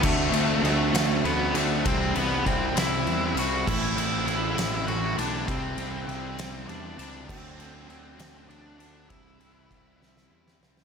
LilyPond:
<<
  \new Staff \with { instrumentName = "Lead electric guitar" } { \time 6/8 \key c \lydian \tempo 4. = 66 <a a'>4 <a a'>4 <b b'>8 <a a'>8 | <c' c''>8 <b b'>8 <c' c''>8 <e' e''>4 <fis' fis''>8 | <e' e''>8 <e' e''>8 <e' e''>4 <fis' fis''>8 <d' d''>8 | <c' c''>4 <c' c''>4 <d' d''>8 <d' d''>8 |
<c' c''>4 <c' c''>4 <d' d''>8 <d' d''>8 | <e' e''>2~ <e' e''>8 r8 | }
  \new Staff \with { instrumentName = "Overdriven electric guitar" } { \time 6/8 \key c \lydian <d a c' fis'>8 <a c' fis'>8 <d a c' fis'>8 <a c' fis'>8 <d a c' fis'>8 <a c' fis'>8 | <c e g c' e'>8 <g c' e'>8 <e g c' e'>8 <g c' e'>8 <e g c' e'>8 <g c' e'>8 | <a, e a c' e'>8 <a c' e'>8 <e a c' e'>8 <a c' e'>8 <e a c' e'>8 <a c' e'>8 | <c e g c' e'>8 <g c' e'>8 <e g c' e'>8 <g c' e'>8 <e g c' e'>8 <g c' e'>8 |
<d a c' fis'>8 <a c' fis'>8 <d a c' fis'>8 <a c' fis'>8 <d a c' fis'>8 <a c' fis'>8 | <c e g c' e'>8 <g c' e'>8 <e g c' e'>8 <g c' e'>8 <e g c' e'>8 <g c' e'>8 | }
  \new Staff \with { instrumentName = "Distorted electric guitar" } { \time 6/8 \key c \lydian <d a d' fis'>8 <a d' fis'>4 <d a d' fis'>8 <d a d' fis'>8 <a d' fis'>8 | <c e g c' e'>8 <g c' e'>4 <c e g c' e'>8 <e g c' e'>8 <g c' e'>8 | <a, e a c' e'>8 <a c' e'>4 <a, e a c' e'>8 <e a c' e'>8 <a c' e'>8 | <c g c' e'>8 <g c' e'>4 <c g c' e'>8 <c g c' e'>8 <g c' e'>8 |
<d fis a d'>8 <fis a d'>4 <d fis a d'>8 <d fis a d'>8 <fis a d'>8 | <c g c' e'>8 <g c' e'>4 <c g c' e'>8 <c g c' e'>8 <g c' e'>8 | }
  \new Staff \with { instrumentName = "Distorted electric guitar" } { \clef bass \time 6/8 \key c \lydian <d a d'>2~ <d a d'>8 <d a d'>8 | <c g c'>2~ <c g c'>8 <c g c'>8 | <a, e a>2~ <a, e a>8 <a, e a>8 | <c g c'>2~ <c g c'>8 <c g c'>8 |
<d a d'>2~ <d a d'>8 <d a d'>8 | <c g c'>2~ <c g c'>8 <c g c'>8 | }
  \new Staff \with { instrumentName = "Picked electric bass" } { \clef bass \time 6/8 \key c \lydian d,8 d,8 d,8 d,8 d,8 d,8 | c,8 c,8 c,8 c,8 e,8 c,8 | a,,8 a,,8 a,,8 a,,8 a,,8 b,,8 | c,8 c,8 c,8 c,8 e,8 cis,8 |
d,8 d,8 d,8 d,8 d,8 d,8 | c,8 c,8 c,8 c,8 e,8 c,8 | }
  \new DrumStaff \with { instrumentName = "Drums" } \drummode { \time 6/8 <cymc bd>8 cymr8 cymr8 <cymr sn>8 cymr8 cymr8 | <bd cymr>8 cymr8 <bd cymr>8 <cymr sn>8 cymr8 cymr8 | <cymc bd>8 cymr8 cymr8 <cymr sn>8 cymr8 cymr8 | <bd cymr>8 cymr8 cymr8 <cymr sn>8 cymr8 cymr8 |
<cymc bd>8 cymr8 cymr8 <cymr sn>8 cymr8 cymr8 | <bd cymr>8 cymr8 <bd cymr>8 sn16 sn8 sn16 sn16 sn16 | }
>>